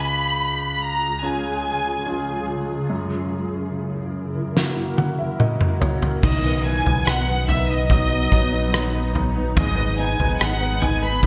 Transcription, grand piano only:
0.00 2.86 C#2 medium
1.23 2.04 C#4 soft
1.23 2.04 F4 soft
1.23 2.04 G#4 soft
2.06 2.87 C#4 soft
2.06 2.88 F4 soft
2.06 2.88 G#4 soft
2.90 6.19 F#2 soft
4.56 5.37 A#3 soft
4.56 5.37 E4 soft
4.56 5.38 F#4 soft
4.97 5.17 F#5 medium
5.19 5.38 E5 soft
5.39 6.20 A#3 soft
5.39 6.21 E4 soft
5.39 6.21 F#4 soft
5.39 5.79 D#5 medium
5.81 6.20 C#5 medium
6.23 9.53 D#3 medium
6.44 6.84 B3 soft
6.65 7.89 F#3 soft
6.86 7.26 B3 soft
7.06 7.46 D#4 soft
7.28 7.68 B3 soft
7.48 8.71 D#4 soft
7.70 8.09 B3 soft
7.90 8.30 F#3 medium
8.11 8.50 B3 soft
8.31 9.53 F#3 soft
8.52 8.92 B3 soft
8.72 9.13 D#4 soft
8.93 9.34 B3 soft
9.15 9.55 D#4 soft
9.35 9.56 B3 soft
9.56 11.26 G#3 medium
9.76 10.18 B4 soft
9.98 10.38 D#4 soft
10.19 10.59 B4 soft
10.39 10.80 D#4 soft
10.61 11.01 B4 soft
10.81 11.22 D#4 soft
11.02 11.26 B4 soft
11.23 11.26 D#4 medium

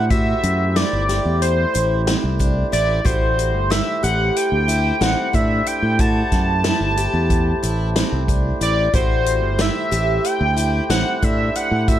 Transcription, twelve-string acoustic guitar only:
0.11 0.65 F#4 medium
0.76 1.03 E4 medium
1.09 1.63 G4 medium
1.74 2.01 E4 medium
2.07 2.34 C4 medium
2.39 2.66 D4 medium
2.72 2.99 E4 medium
3.05 3.59 F#4 medium
3.70 3.97 E4 medium
4.03 4.57 G4 medium
4.68 4.95 E4 medium
5.01 5.28 C4 medium
5.33 5.60 D4 medium
5.67 5.94 E4 medium
5.99 6.53 F#4 medium
6.65 6.92 E4 medium
6.98 7.51 G4 medium
7.63 7.90 E4 medium
7.96 8.23 C4 medium
8.29 8.56 D4 medium
8.61 8.88 E4 medium
8.94 9.47 F#4 medium
9.59 9.86 E4 medium
9.92 10.45 G4 medium
10.57 10.84 E4 medium
10.90 11.17 C4 medium
11.22 11.49 D4 medium
11.56 11.82 E4 medium
11.88 11.99 F#4 medium

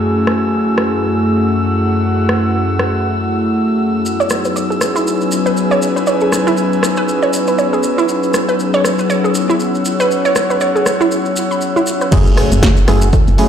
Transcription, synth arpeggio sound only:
4.20 4.27 C#5 loud
4.45 4.55 B4 medium
4.56 4.61 C#5 medium
4.70 4.77 G#4 medium
4.96 5.02 E4 loud
5.46 5.53 B4 loud
5.71 5.78 C#5 loud
5.96 6.06 B4 medium
6.07 6.12 C#5 medium
6.22 6.28 G#4 medium
6.47 6.53 E4 loud
6.97 7.04 B4 loud
7.23 7.29 C#5 medium
7.48 7.57 B4 medium
7.58 7.64 C#5 medium
7.73 7.79 G#4 medium
7.98 8.05 E4 loud
8.49 8.55 B4 loud
8.74 8.80 C#5 loud
8.99 9.09 B4 medium
9.10 9.15 C#5 medium
9.24 9.31 G#4 medium
9.50 9.56 E4 loud
10.00 10.06 B4 loud
10.25 10.32 C#5 loud
10.50 10.60 B4 medium
10.61 10.66 C#5 medium
10.75 10.82 G#4 medium
11.01 11.07 E4 loud
11.51 11.61 B5 medium
11.76 11.80 E4 loud
12.01 12.11 B4 medium
12.12 12.17 A4 medium
12.37 12.46 G#4 medium
12.63 12.68 F#4 medium
12.88 12.97 E4 medium
13.13 13.22 A4 medium
13.38 13.47 G#4 medium

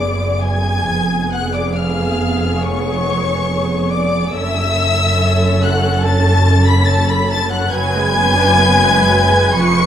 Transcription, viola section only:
0.00 0.84 B3 medium
0.00 0.84 G#4 medium
0.89 4.31 B3 medium
0.89 4.31 G#4 medium
4.33 7.69 C#4 medium
4.33 7.69 A4 medium
7.72 7.92 F#3 medium
7.72 9.86 B4 loud
7.92 8.15 G#3 medium
8.14 8.36 B3 medium
8.35 8.58 D4 medium
8.57 8.81 B3 medium
8.81 9.06 G#3 medium
9.06 9.31 F#3 medium
9.31 9.55 G#3 medium
9.54 9.76 F3 medium
9.78 9.86 G#3 medium

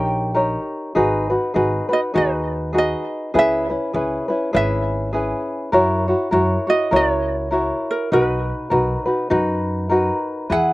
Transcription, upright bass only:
0.00 0.54 A#1 loud
0.96 1.35 G#1 medium
1.56 1.78 G#1 medium
2.15 2.93 D#2 loud
3.35 3.73 C#2 medium
3.94 4.17 C#2 medium
4.54 5.32 G#1 loud
5.73 6.12 F#2 medium
6.32 6.55 F#2 medium
6.92 7.70 C#2 medium
8.12 8.51 B1 medium
8.71 8.94 B1 medium
9.31 10.09 F#2 loud
10.50 10.73 E2 medium

